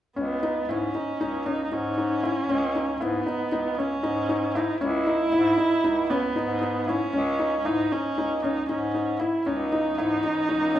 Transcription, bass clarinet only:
0.18 0.60 C#2 medium
0.70 0.91 G#2 medium
1.20 1.63 C#2 medium
1.72 2.36 G#2 medium
2.49 2.92 C#2 medium
3.01 3.22 G#2 medium
3.51 3.95 C#2 medium
4.04 4.68 G#2 medium
4.81 5.24 C#2 medium
5.34 5.55 G#2 medium
5.85 6.28 C#2 medium
6.36 7.01 G#2 medium
7.15 7.57 C#2 medium
7.66 7.87 G#2 medium
8.17 8.60 C#2 medium
8.69 9.33 G#2 medium
9.47 9.90 C#2 medium
9.98 10.20 G#2 medium
10.52 10.79 C#2 medium

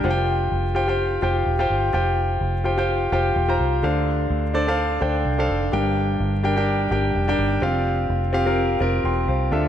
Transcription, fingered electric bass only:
0.04 0.48 F1 loud
0.52 1.19 F1 medium
1.22 1.45 F1 loud
1.46 1.68 E1 medium
1.70 1.92 G1 medium
1.94 2.38 F1 loud
2.41 3.08 F1 medium
3.12 3.34 F1 medium
3.36 3.58 E1 loud
3.59 3.81 C2 medium
3.83 4.27 D2 medium
4.30 4.98 D2 loud
5.02 5.24 D2 loud
5.25 5.47 C2 medium
5.49 5.71 F1 medium
5.73 6.17 G1 loud
6.20 6.88 G1 loud
6.91 7.13 G1 loud
7.15 7.37 F1 medium
7.39 7.61 G1 medium
7.62 8.06 F1 loud
8.10 8.77 F1 loud
8.81 9.03 F1 loud
9.04 9.26 E1 medium
9.28 9.50 C2 medium
9.51 9.68 D2 medium

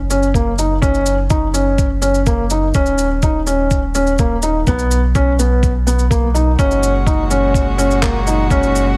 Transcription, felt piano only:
0.10 0.26 C#4 medium
0.35 0.50 A#3 medium
0.59 0.74 D#4 medium
0.82 1.14 C#4 medium
1.30 1.46 D#4 medium
1.54 1.86 C#4 medium
2.02 2.18 C#4 medium
2.27 2.42 A#3 medium
2.51 2.67 D#4 medium
2.75 3.06 C#4 medium
3.23 3.39 D#4 medium
3.47 3.78 C#4 medium
3.95 4.11 C#4 medium
4.19 4.35 A#3 medium
4.43 4.59 D#4 medium
4.68 4.99 B3 medium
5.15 5.31 C#4 medium
5.39 5.71 B3 medium
5.87 6.02 B3 medium
6.10 6.26 A#3 medium
6.34 6.50 D#4 medium
6.59 6.90 C#4 medium
7.07 7.22 D#4 medium
7.31 7.62 C#4 medium
7.78 7.94 C#4 medium
8.02 8.18 A#3 medium
8.27 8.43 D#4 medium
8.51 8.82 C#4 medium

